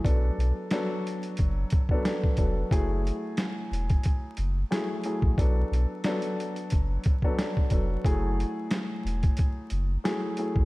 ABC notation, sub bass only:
X:1
M:4/4
L:1/16
Q:"Swing 16ths" 1/4=90
K:F#m
V:1 name="Sub bass" clef=bass
B,,,2 B,,, z4 z F,,,2 z4 ^E,,,2 | F,,,3 z3 E,,,2 z2 F,,,2 z3 ^A,,, | B,,,2 B,,, z4 z F,,,2 z4 ^E,,,2 | F,,,3 z3 E,,,2 z2 F,,,2 z3 ^A,,, |]